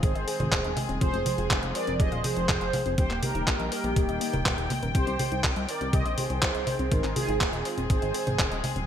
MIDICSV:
0, 0, Header, 1, 6, 480
1, 0, Start_track
1, 0, Tempo, 491803
1, 990, Time_signature, 4, 2, 24, 8
1, 8652, End_track
2, 0, Start_track
2, 0, Title_t, "Analog polysynth"
2, 0, Program_c, 0, 90
2, 40, Note_on_c, 0, 72, 96
2, 41, Note_on_c, 0, 68, 70
2, 716, Note_off_c, 0, 68, 0
2, 716, Note_off_c, 0, 72, 0
2, 993, Note_on_c, 0, 72, 112
2, 1001, Note_on_c, 0, 68, 89
2, 1438, Note_off_c, 0, 72, 0
2, 1442, Note_off_c, 0, 68, 0
2, 1712, Note_on_c, 0, 74, 118
2, 1718, Note_on_c, 0, 70, 89
2, 1937, Note_off_c, 0, 70, 0
2, 1952, Note_on_c, 0, 75, 114
2, 1958, Note_off_c, 0, 74, 0
2, 1958, Note_on_c, 0, 72, 89
2, 2177, Note_off_c, 0, 72, 0
2, 2194, Note_on_c, 0, 72, 117
2, 2198, Note_off_c, 0, 75, 0
2, 2200, Note_on_c, 0, 68, 91
2, 2873, Note_off_c, 0, 72, 0
2, 2875, Note_off_c, 0, 68, 0
2, 2913, Note_on_c, 0, 72, 101
2, 2919, Note_on_c, 0, 67, 83
2, 3138, Note_off_c, 0, 67, 0
2, 3155, Note_on_c, 0, 70, 101
2, 3158, Note_off_c, 0, 72, 0
2, 3164, Note_on_c, 0, 67, 81
2, 3604, Note_off_c, 0, 67, 0
2, 3620, Note_off_c, 0, 70, 0
2, 3631, Note_on_c, 0, 70, 100
2, 3639, Note_on_c, 0, 67, 78
2, 3858, Note_off_c, 0, 67, 0
2, 3876, Note_on_c, 0, 67, 90
2, 3877, Note_off_c, 0, 70, 0
2, 3884, Note_on_c, 0, 63, 67
2, 4554, Note_off_c, 0, 67, 0
2, 4558, Note_off_c, 0, 63, 0
2, 4832, Note_on_c, 0, 72, 120
2, 4841, Note_on_c, 0, 67, 91
2, 5277, Note_off_c, 0, 72, 0
2, 5282, Note_off_c, 0, 67, 0
2, 5553, Note_on_c, 0, 74, 109
2, 5561, Note_on_c, 0, 70, 88
2, 5779, Note_off_c, 0, 70, 0
2, 5790, Note_on_c, 0, 75, 109
2, 5798, Note_off_c, 0, 74, 0
2, 5801, Note_on_c, 0, 72, 90
2, 6019, Note_off_c, 0, 72, 0
2, 6031, Note_on_c, 0, 72, 120
2, 6037, Note_off_c, 0, 75, 0
2, 6041, Note_on_c, 0, 68, 90
2, 6716, Note_off_c, 0, 68, 0
2, 6746, Note_on_c, 0, 70, 103
2, 6760, Note_on_c, 0, 63, 78
2, 6772, Note_off_c, 0, 72, 0
2, 6978, Note_off_c, 0, 63, 0
2, 6986, Note_on_c, 0, 68, 98
2, 6995, Note_off_c, 0, 70, 0
2, 6996, Note_on_c, 0, 65, 75
2, 7439, Note_off_c, 0, 65, 0
2, 7457, Note_off_c, 0, 68, 0
2, 7469, Note_on_c, 0, 68, 89
2, 7479, Note_on_c, 0, 65, 74
2, 7697, Note_off_c, 0, 65, 0
2, 7707, Note_off_c, 0, 68, 0
2, 7708, Note_on_c, 0, 72, 95
2, 7719, Note_on_c, 0, 68, 74
2, 8390, Note_off_c, 0, 72, 0
2, 8395, Note_off_c, 0, 68, 0
2, 8652, End_track
3, 0, Start_track
3, 0, Title_t, "Synth arpeggio sound"
3, 0, Program_c, 1, 84
3, 27, Note_on_c, 1, 68, 85
3, 105, Note_off_c, 1, 68, 0
3, 147, Note_on_c, 1, 75, 75
3, 194, Note_off_c, 1, 75, 0
3, 268, Note_on_c, 1, 68, 75
3, 346, Note_off_c, 1, 68, 0
3, 388, Note_on_c, 1, 72, 75
3, 466, Note_off_c, 1, 72, 0
3, 506, Note_on_c, 1, 72, 102
3, 554, Note_off_c, 1, 72, 0
3, 627, Note_on_c, 1, 75, 81
3, 735, Note_off_c, 1, 75, 0
3, 747, Note_on_c, 1, 75, 77
3, 862, Note_off_c, 1, 75, 0
3, 867, Note_on_c, 1, 60, 82
3, 945, Note_off_c, 1, 60, 0
3, 986, Note_on_c, 1, 60, 81
3, 1065, Note_off_c, 1, 60, 0
3, 1106, Note_on_c, 1, 60, 78
3, 1185, Note_off_c, 1, 60, 0
3, 1228, Note_on_c, 1, 68, 82
3, 1305, Note_off_c, 1, 68, 0
3, 1348, Note_on_c, 1, 65, 76
3, 1462, Note_off_c, 1, 65, 0
3, 1466, Note_on_c, 1, 82, 89
3, 1514, Note_off_c, 1, 82, 0
3, 1588, Note_on_c, 1, 77, 73
3, 1703, Note_off_c, 1, 77, 0
3, 1708, Note_on_c, 1, 72, 85
3, 1755, Note_off_c, 1, 72, 0
3, 1828, Note_on_c, 1, 60, 74
3, 1905, Note_off_c, 1, 60, 0
3, 1948, Note_on_c, 1, 68, 86
3, 2025, Note_off_c, 1, 68, 0
3, 2068, Note_on_c, 1, 77, 78
3, 2115, Note_off_c, 1, 77, 0
3, 2189, Note_on_c, 1, 68, 79
3, 2266, Note_off_c, 1, 68, 0
3, 2309, Note_on_c, 1, 72, 73
3, 2386, Note_off_c, 1, 72, 0
3, 2428, Note_on_c, 1, 72, 110
3, 2475, Note_off_c, 1, 72, 0
3, 2548, Note_on_c, 1, 77, 78
3, 2657, Note_off_c, 1, 77, 0
3, 2669, Note_on_c, 1, 77, 75
3, 2783, Note_off_c, 1, 77, 0
3, 2789, Note_on_c, 1, 60, 76
3, 2866, Note_off_c, 1, 60, 0
3, 2908, Note_on_c, 1, 58, 81
3, 2985, Note_off_c, 1, 58, 0
3, 3028, Note_on_c, 1, 58, 80
3, 3106, Note_off_c, 1, 58, 0
3, 3148, Note_on_c, 1, 67, 74
3, 3226, Note_off_c, 1, 67, 0
3, 3269, Note_on_c, 1, 63, 78
3, 3383, Note_off_c, 1, 63, 0
3, 3387, Note_on_c, 1, 82, 82
3, 3434, Note_off_c, 1, 82, 0
3, 3508, Note_on_c, 1, 75, 78
3, 3623, Note_off_c, 1, 75, 0
3, 3629, Note_on_c, 1, 70, 77
3, 3675, Note_off_c, 1, 70, 0
3, 3747, Note_on_c, 1, 58, 76
3, 3825, Note_off_c, 1, 58, 0
3, 3868, Note_on_c, 1, 67, 85
3, 3945, Note_off_c, 1, 67, 0
3, 3989, Note_on_c, 1, 75, 77
3, 4035, Note_off_c, 1, 75, 0
3, 4107, Note_on_c, 1, 58, 104
3, 4185, Note_off_c, 1, 58, 0
3, 4227, Note_on_c, 1, 70, 75
3, 4336, Note_off_c, 1, 70, 0
3, 4348, Note_on_c, 1, 70, 92
3, 4425, Note_off_c, 1, 70, 0
3, 4468, Note_on_c, 1, 67, 82
3, 4515, Note_off_c, 1, 67, 0
3, 4588, Note_on_c, 1, 58, 77
3, 4666, Note_off_c, 1, 58, 0
3, 4709, Note_on_c, 1, 70, 78
3, 4755, Note_off_c, 1, 70, 0
3, 4829, Note_on_c, 1, 60, 78
3, 4906, Note_off_c, 1, 60, 0
3, 4949, Note_on_c, 1, 60, 82
3, 5026, Note_off_c, 1, 60, 0
3, 5070, Note_on_c, 1, 67, 78
3, 5147, Note_off_c, 1, 67, 0
3, 5189, Note_on_c, 1, 63, 75
3, 5303, Note_off_c, 1, 63, 0
3, 5309, Note_on_c, 1, 82, 88
3, 5355, Note_off_c, 1, 82, 0
3, 5431, Note_on_c, 1, 75, 75
3, 5544, Note_off_c, 1, 75, 0
3, 5550, Note_on_c, 1, 72, 86
3, 5596, Note_off_c, 1, 72, 0
3, 5670, Note_on_c, 1, 60, 76
3, 5747, Note_off_c, 1, 60, 0
3, 5789, Note_on_c, 1, 67, 85
3, 5866, Note_off_c, 1, 67, 0
3, 5909, Note_on_c, 1, 75, 80
3, 5955, Note_off_c, 1, 75, 0
3, 6029, Note_on_c, 1, 67, 77
3, 6106, Note_off_c, 1, 67, 0
3, 6150, Note_on_c, 1, 72, 77
3, 6226, Note_off_c, 1, 72, 0
3, 6269, Note_on_c, 1, 72, 112
3, 6316, Note_off_c, 1, 72, 0
3, 6390, Note_on_c, 1, 75, 77
3, 6498, Note_off_c, 1, 75, 0
3, 6510, Note_on_c, 1, 75, 77
3, 6623, Note_off_c, 1, 75, 0
3, 6630, Note_on_c, 1, 60, 83
3, 6707, Note_off_c, 1, 60, 0
3, 6748, Note_on_c, 1, 60, 85
3, 6826, Note_off_c, 1, 60, 0
3, 6869, Note_on_c, 1, 60, 79
3, 6946, Note_off_c, 1, 60, 0
3, 6989, Note_on_c, 1, 68, 78
3, 7066, Note_off_c, 1, 68, 0
3, 7108, Note_on_c, 1, 63, 81
3, 7223, Note_off_c, 1, 63, 0
3, 7229, Note_on_c, 1, 82, 88
3, 7275, Note_off_c, 1, 82, 0
3, 7348, Note_on_c, 1, 75, 81
3, 7463, Note_off_c, 1, 75, 0
3, 7469, Note_on_c, 1, 72, 78
3, 7515, Note_off_c, 1, 72, 0
3, 7587, Note_on_c, 1, 60, 73
3, 7665, Note_off_c, 1, 60, 0
3, 7708, Note_on_c, 1, 68, 85
3, 7786, Note_off_c, 1, 68, 0
3, 7828, Note_on_c, 1, 75, 78
3, 7875, Note_off_c, 1, 75, 0
3, 7948, Note_on_c, 1, 68, 84
3, 8026, Note_off_c, 1, 68, 0
3, 8069, Note_on_c, 1, 72, 73
3, 8146, Note_off_c, 1, 72, 0
3, 8187, Note_on_c, 1, 72, 105
3, 8234, Note_off_c, 1, 72, 0
3, 8308, Note_on_c, 1, 75, 83
3, 8418, Note_off_c, 1, 75, 0
3, 8429, Note_on_c, 1, 75, 81
3, 8543, Note_off_c, 1, 75, 0
3, 8550, Note_on_c, 1, 60, 77
3, 8626, Note_off_c, 1, 60, 0
3, 8652, End_track
4, 0, Start_track
4, 0, Title_t, "String section"
4, 0, Program_c, 2, 48
4, 0, Note_on_c, 2, 51, 82
4, 0, Note_on_c, 2, 56, 73
4, 0, Note_on_c, 2, 60, 78
4, 0, Note_on_c, 2, 68, 91
4, 950, Note_off_c, 2, 51, 0
4, 990, Note_on_c, 2, 53, 88
4, 2871, Note_off_c, 2, 60, 0
4, 2871, Note_off_c, 2, 68, 0
4, 2872, Note_off_c, 2, 56, 0
4, 2890, Note_off_c, 2, 53, 0
4, 2909, Note_on_c, 2, 51, 87
4, 2909, Note_on_c, 2, 79, 97
4, 2910, Note_on_c, 2, 58, 76
4, 2911, Note_on_c, 2, 55, 78
4, 4810, Note_off_c, 2, 51, 0
4, 4811, Note_off_c, 2, 55, 0
4, 4811, Note_off_c, 2, 58, 0
4, 4828, Note_on_c, 2, 51, 82
4, 4828, Note_on_c, 2, 60, 75
4, 6711, Note_off_c, 2, 79, 0
4, 6746, Note_on_c, 2, 68, 95
4, 6747, Note_on_c, 2, 56, 76
4, 8630, Note_off_c, 2, 51, 0
4, 8652, Note_off_c, 2, 56, 0
4, 8652, Note_off_c, 2, 60, 0
4, 8652, Note_off_c, 2, 68, 0
4, 8652, End_track
5, 0, Start_track
5, 0, Title_t, "Analog synth bass"
5, 0, Program_c, 3, 38
5, 28, Note_on_c, 3, 32, 109
5, 130, Note_off_c, 3, 32, 0
5, 151, Note_on_c, 3, 32, 77
5, 251, Note_off_c, 3, 32, 0
5, 392, Note_on_c, 3, 32, 81
5, 492, Note_off_c, 3, 32, 0
5, 509, Note_on_c, 3, 27, 107
5, 610, Note_off_c, 3, 27, 0
5, 633, Note_on_c, 3, 27, 76
5, 732, Note_off_c, 3, 27, 0
5, 871, Note_on_c, 3, 27, 91
5, 971, Note_off_c, 3, 27, 0
5, 989, Note_on_c, 3, 29, 108
5, 1090, Note_off_c, 3, 29, 0
5, 1113, Note_on_c, 3, 29, 83
5, 1212, Note_off_c, 3, 29, 0
5, 1351, Note_on_c, 3, 29, 84
5, 1451, Note_off_c, 3, 29, 0
5, 1469, Note_on_c, 3, 29, 104
5, 1570, Note_off_c, 3, 29, 0
5, 1591, Note_on_c, 3, 29, 78
5, 1691, Note_off_c, 3, 29, 0
5, 1832, Note_on_c, 3, 29, 87
5, 1932, Note_off_c, 3, 29, 0
5, 1949, Note_on_c, 3, 29, 103
5, 2050, Note_off_c, 3, 29, 0
5, 2072, Note_on_c, 3, 27, 79
5, 2172, Note_off_c, 3, 27, 0
5, 2311, Note_on_c, 3, 29, 85
5, 2411, Note_off_c, 3, 29, 0
5, 2429, Note_on_c, 3, 29, 107
5, 2530, Note_off_c, 3, 29, 0
5, 2552, Note_on_c, 3, 29, 77
5, 2652, Note_off_c, 3, 29, 0
5, 2791, Note_on_c, 3, 29, 85
5, 2891, Note_off_c, 3, 29, 0
5, 2909, Note_on_c, 3, 27, 105
5, 3010, Note_off_c, 3, 27, 0
5, 3029, Note_on_c, 3, 27, 76
5, 3130, Note_off_c, 3, 27, 0
5, 3269, Note_on_c, 3, 27, 83
5, 3370, Note_off_c, 3, 27, 0
5, 3389, Note_on_c, 3, 34, 98
5, 3490, Note_off_c, 3, 34, 0
5, 3509, Note_on_c, 3, 34, 81
5, 3610, Note_off_c, 3, 34, 0
5, 3748, Note_on_c, 3, 34, 83
5, 3850, Note_off_c, 3, 34, 0
5, 3869, Note_on_c, 3, 27, 106
5, 3970, Note_off_c, 3, 27, 0
5, 3990, Note_on_c, 3, 27, 76
5, 4091, Note_off_c, 3, 27, 0
5, 4231, Note_on_c, 3, 27, 83
5, 4331, Note_off_c, 3, 27, 0
5, 4350, Note_on_c, 3, 27, 105
5, 4451, Note_off_c, 3, 27, 0
5, 4470, Note_on_c, 3, 27, 76
5, 4571, Note_off_c, 3, 27, 0
5, 4710, Note_on_c, 3, 27, 84
5, 4811, Note_off_c, 3, 27, 0
5, 4830, Note_on_c, 3, 36, 107
5, 4931, Note_off_c, 3, 36, 0
5, 4951, Note_on_c, 3, 36, 80
5, 5051, Note_off_c, 3, 36, 0
5, 5191, Note_on_c, 3, 36, 78
5, 5291, Note_off_c, 3, 36, 0
5, 5310, Note_on_c, 3, 36, 97
5, 5411, Note_off_c, 3, 36, 0
5, 5429, Note_on_c, 3, 36, 77
5, 5531, Note_off_c, 3, 36, 0
5, 5670, Note_on_c, 3, 36, 83
5, 5771, Note_off_c, 3, 36, 0
5, 5790, Note_on_c, 3, 36, 107
5, 5891, Note_off_c, 3, 36, 0
5, 5910, Note_on_c, 3, 34, 73
5, 6011, Note_off_c, 3, 34, 0
5, 6150, Note_on_c, 3, 36, 82
5, 6251, Note_off_c, 3, 36, 0
5, 6270, Note_on_c, 3, 36, 97
5, 6371, Note_off_c, 3, 36, 0
5, 6392, Note_on_c, 3, 36, 77
5, 6492, Note_off_c, 3, 36, 0
5, 6631, Note_on_c, 3, 36, 88
5, 6731, Note_off_c, 3, 36, 0
5, 6750, Note_on_c, 3, 32, 109
5, 6851, Note_off_c, 3, 32, 0
5, 6872, Note_on_c, 3, 32, 76
5, 6972, Note_off_c, 3, 32, 0
5, 7112, Note_on_c, 3, 32, 83
5, 7212, Note_off_c, 3, 32, 0
5, 7230, Note_on_c, 3, 27, 103
5, 7331, Note_off_c, 3, 27, 0
5, 7351, Note_on_c, 3, 27, 79
5, 7451, Note_off_c, 3, 27, 0
5, 7590, Note_on_c, 3, 27, 84
5, 7691, Note_off_c, 3, 27, 0
5, 7710, Note_on_c, 3, 32, 105
5, 7811, Note_off_c, 3, 32, 0
5, 7830, Note_on_c, 3, 32, 78
5, 7931, Note_off_c, 3, 32, 0
5, 8071, Note_on_c, 3, 32, 84
5, 8171, Note_off_c, 3, 32, 0
5, 8190, Note_on_c, 3, 27, 102
5, 8291, Note_off_c, 3, 27, 0
5, 8310, Note_on_c, 3, 27, 79
5, 8411, Note_off_c, 3, 27, 0
5, 8549, Note_on_c, 3, 27, 85
5, 8650, Note_off_c, 3, 27, 0
5, 8652, End_track
6, 0, Start_track
6, 0, Title_t, "Drums"
6, 29, Note_on_c, 9, 36, 118
6, 30, Note_on_c, 9, 42, 86
6, 126, Note_off_c, 9, 36, 0
6, 128, Note_off_c, 9, 42, 0
6, 151, Note_on_c, 9, 42, 36
6, 249, Note_off_c, 9, 42, 0
6, 270, Note_on_c, 9, 46, 107
6, 367, Note_off_c, 9, 46, 0
6, 390, Note_on_c, 9, 42, 37
6, 390, Note_on_c, 9, 63, 79
6, 487, Note_off_c, 9, 42, 0
6, 487, Note_off_c, 9, 63, 0
6, 509, Note_on_c, 9, 36, 102
6, 509, Note_on_c, 9, 39, 115
6, 509, Note_on_c, 9, 42, 89
6, 607, Note_off_c, 9, 36, 0
6, 607, Note_off_c, 9, 39, 0
6, 607, Note_off_c, 9, 42, 0
6, 629, Note_on_c, 9, 42, 38
6, 727, Note_off_c, 9, 42, 0
6, 748, Note_on_c, 9, 46, 101
6, 748, Note_on_c, 9, 63, 76
6, 846, Note_off_c, 9, 46, 0
6, 846, Note_off_c, 9, 63, 0
6, 869, Note_on_c, 9, 42, 35
6, 967, Note_off_c, 9, 42, 0
6, 989, Note_on_c, 9, 36, 109
6, 989, Note_on_c, 9, 42, 87
6, 1087, Note_off_c, 9, 36, 0
6, 1087, Note_off_c, 9, 42, 0
6, 1109, Note_on_c, 9, 42, 39
6, 1207, Note_off_c, 9, 42, 0
6, 1229, Note_on_c, 9, 46, 118
6, 1229, Note_on_c, 9, 63, 86
6, 1326, Note_off_c, 9, 46, 0
6, 1326, Note_off_c, 9, 63, 0
6, 1349, Note_on_c, 9, 42, 38
6, 1446, Note_off_c, 9, 42, 0
6, 1468, Note_on_c, 9, 39, 110
6, 1468, Note_on_c, 9, 42, 88
6, 1469, Note_on_c, 9, 36, 99
6, 1566, Note_off_c, 9, 39, 0
6, 1566, Note_off_c, 9, 42, 0
6, 1567, Note_off_c, 9, 36, 0
6, 1588, Note_on_c, 9, 42, 39
6, 1686, Note_off_c, 9, 42, 0
6, 1709, Note_on_c, 9, 46, 113
6, 1806, Note_off_c, 9, 46, 0
6, 1828, Note_on_c, 9, 42, 39
6, 1926, Note_off_c, 9, 42, 0
6, 1949, Note_on_c, 9, 36, 120
6, 1949, Note_on_c, 9, 42, 89
6, 2047, Note_off_c, 9, 36, 0
6, 2047, Note_off_c, 9, 42, 0
6, 2069, Note_on_c, 9, 42, 39
6, 2166, Note_off_c, 9, 42, 0
6, 2188, Note_on_c, 9, 46, 116
6, 2188, Note_on_c, 9, 63, 65
6, 2286, Note_off_c, 9, 46, 0
6, 2286, Note_off_c, 9, 63, 0
6, 2309, Note_on_c, 9, 42, 38
6, 2406, Note_off_c, 9, 42, 0
6, 2429, Note_on_c, 9, 36, 96
6, 2429, Note_on_c, 9, 39, 111
6, 2429, Note_on_c, 9, 42, 88
6, 2526, Note_off_c, 9, 36, 0
6, 2526, Note_off_c, 9, 39, 0
6, 2526, Note_off_c, 9, 42, 0
6, 2548, Note_on_c, 9, 42, 37
6, 2646, Note_off_c, 9, 42, 0
6, 2668, Note_on_c, 9, 46, 108
6, 2668, Note_on_c, 9, 63, 80
6, 2766, Note_off_c, 9, 46, 0
6, 2766, Note_off_c, 9, 63, 0
6, 2788, Note_on_c, 9, 42, 37
6, 2886, Note_off_c, 9, 42, 0
6, 2908, Note_on_c, 9, 42, 92
6, 2909, Note_on_c, 9, 36, 115
6, 3005, Note_off_c, 9, 42, 0
6, 3006, Note_off_c, 9, 36, 0
6, 3028, Note_on_c, 9, 39, 38
6, 3028, Note_on_c, 9, 42, 41
6, 3126, Note_off_c, 9, 39, 0
6, 3126, Note_off_c, 9, 42, 0
6, 3149, Note_on_c, 9, 46, 118
6, 3149, Note_on_c, 9, 63, 86
6, 3246, Note_off_c, 9, 46, 0
6, 3246, Note_off_c, 9, 63, 0
6, 3270, Note_on_c, 9, 42, 41
6, 3368, Note_off_c, 9, 42, 0
6, 3389, Note_on_c, 9, 36, 102
6, 3391, Note_on_c, 9, 39, 111
6, 3391, Note_on_c, 9, 42, 89
6, 3486, Note_off_c, 9, 36, 0
6, 3488, Note_off_c, 9, 39, 0
6, 3488, Note_off_c, 9, 42, 0
6, 3510, Note_on_c, 9, 42, 39
6, 3607, Note_off_c, 9, 42, 0
6, 3629, Note_on_c, 9, 46, 118
6, 3726, Note_off_c, 9, 46, 0
6, 3749, Note_on_c, 9, 42, 41
6, 3847, Note_off_c, 9, 42, 0
6, 3869, Note_on_c, 9, 36, 116
6, 3869, Note_on_c, 9, 42, 97
6, 3967, Note_off_c, 9, 36, 0
6, 3967, Note_off_c, 9, 42, 0
6, 3990, Note_on_c, 9, 42, 40
6, 4088, Note_off_c, 9, 42, 0
6, 4110, Note_on_c, 9, 46, 119
6, 4208, Note_off_c, 9, 46, 0
6, 4230, Note_on_c, 9, 42, 40
6, 4230, Note_on_c, 9, 63, 76
6, 4328, Note_off_c, 9, 42, 0
6, 4328, Note_off_c, 9, 63, 0
6, 4349, Note_on_c, 9, 36, 98
6, 4350, Note_on_c, 9, 39, 114
6, 4350, Note_on_c, 9, 42, 95
6, 4447, Note_off_c, 9, 36, 0
6, 4448, Note_off_c, 9, 39, 0
6, 4448, Note_off_c, 9, 42, 0
6, 4470, Note_on_c, 9, 42, 39
6, 4568, Note_off_c, 9, 42, 0
6, 4589, Note_on_c, 9, 46, 106
6, 4589, Note_on_c, 9, 63, 79
6, 4687, Note_off_c, 9, 46, 0
6, 4687, Note_off_c, 9, 63, 0
6, 4710, Note_on_c, 9, 42, 39
6, 4808, Note_off_c, 9, 42, 0
6, 4829, Note_on_c, 9, 36, 118
6, 4830, Note_on_c, 9, 42, 95
6, 4927, Note_off_c, 9, 36, 0
6, 4928, Note_off_c, 9, 42, 0
6, 4949, Note_on_c, 9, 42, 43
6, 5047, Note_off_c, 9, 42, 0
6, 5070, Note_on_c, 9, 46, 110
6, 5070, Note_on_c, 9, 63, 84
6, 5167, Note_off_c, 9, 46, 0
6, 5167, Note_off_c, 9, 63, 0
6, 5190, Note_on_c, 9, 42, 43
6, 5287, Note_off_c, 9, 42, 0
6, 5308, Note_on_c, 9, 39, 117
6, 5308, Note_on_c, 9, 42, 89
6, 5310, Note_on_c, 9, 36, 104
6, 5406, Note_off_c, 9, 39, 0
6, 5406, Note_off_c, 9, 42, 0
6, 5407, Note_off_c, 9, 36, 0
6, 5429, Note_on_c, 9, 42, 42
6, 5527, Note_off_c, 9, 42, 0
6, 5549, Note_on_c, 9, 46, 115
6, 5647, Note_off_c, 9, 46, 0
6, 5670, Note_on_c, 9, 42, 39
6, 5768, Note_off_c, 9, 42, 0
6, 5789, Note_on_c, 9, 36, 118
6, 5790, Note_on_c, 9, 42, 98
6, 5887, Note_off_c, 9, 36, 0
6, 5887, Note_off_c, 9, 42, 0
6, 5910, Note_on_c, 9, 42, 43
6, 6008, Note_off_c, 9, 42, 0
6, 6029, Note_on_c, 9, 46, 116
6, 6029, Note_on_c, 9, 63, 63
6, 6126, Note_off_c, 9, 46, 0
6, 6126, Note_off_c, 9, 63, 0
6, 6149, Note_on_c, 9, 42, 42
6, 6246, Note_off_c, 9, 42, 0
6, 6268, Note_on_c, 9, 39, 122
6, 6268, Note_on_c, 9, 42, 100
6, 6270, Note_on_c, 9, 36, 108
6, 6365, Note_off_c, 9, 39, 0
6, 6365, Note_off_c, 9, 42, 0
6, 6367, Note_off_c, 9, 36, 0
6, 6389, Note_on_c, 9, 42, 42
6, 6487, Note_off_c, 9, 42, 0
6, 6509, Note_on_c, 9, 46, 99
6, 6509, Note_on_c, 9, 63, 75
6, 6607, Note_off_c, 9, 46, 0
6, 6607, Note_off_c, 9, 63, 0
6, 6630, Note_on_c, 9, 42, 40
6, 6727, Note_off_c, 9, 42, 0
6, 6749, Note_on_c, 9, 42, 90
6, 6750, Note_on_c, 9, 36, 119
6, 6847, Note_off_c, 9, 36, 0
6, 6847, Note_off_c, 9, 42, 0
6, 6869, Note_on_c, 9, 39, 38
6, 6869, Note_on_c, 9, 42, 43
6, 6967, Note_off_c, 9, 39, 0
6, 6967, Note_off_c, 9, 42, 0
6, 6990, Note_on_c, 9, 46, 114
6, 6990, Note_on_c, 9, 63, 80
6, 7088, Note_off_c, 9, 46, 0
6, 7088, Note_off_c, 9, 63, 0
6, 7110, Note_on_c, 9, 42, 43
6, 7208, Note_off_c, 9, 42, 0
6, 7229, Note_on_c, 9, 39, 115
6, 7229, Note_on_c, 9, 42, 97
6, 7230, Note_on_c, 9, 36, 104
6, 7327, Note_off_c, 9, 36, 0
6, 7327, Note_off_c, 9, 39, 0
6, 7327, Note_off_c, 9, 42, 0
6, 7349, Note_on_c, 9, 42, 43
6, 7447, Note_off_c, 9, 42, 0
6, 7469, Note_on_c, 9, 46, 105
6, 7567, Note_off_c, 9, 46, 0
6, 7590, Note_on_c, 9, 42, 42
6, 7687, Note_off_c, 9, 42, 0
6, 7709, Note_on_c, 9, 42, 100
6, 7710, Note_on_c, 9, 36, 123
6, 7807, Note_off_c, 9, 42, 0
6, 7808, Note_off_c, 9, 36, 0
6, 7829, Note_on_c, 9, 42, 42
6, 7927, Note_off_c, 9, 42, 0
6, 7949, Note_on_c, 9, 46, 106
6, 8047, Note_off_c, 9, 46, 0
6, 8071, Note_on_c, 9, 42, 42
6, 8071, Note_on_c, 9, 63, 73
6, 8168, Note_off_c, 9, 42, 0
6, 8168, Note_off_c, 9, 63, 0
6, 8190, Note_on_c, 9, 36, 112
6, 8190, Note_on_c, 9, 39, 126
6, 8190, Note_on_c, 9, 42, 95
6, 8287, Note_off_c, 9, 36, 0
6, 8287, Note_off_c, 9, 39, 0
6, 8287, Note_off_c, 9, 42, 0
6, 8311, Note_on_c, 9, 42, 43
6, 8409, Note_off_c, 9, 42, 0
6, 8431, Note_on_c, 9, 46, 109
6, 8431, Note_on_c, 9, 63, 74
6, 8528, Note_off_c, 9, 46, 0
6, 8528, Note_off_c, 9, 63, 0
6, 8550, Note_on_c, 9, 42, 40
6, 8647, Note_off_c, 9, 42, 0
6, 8652, End_track
0, 0, End_of_file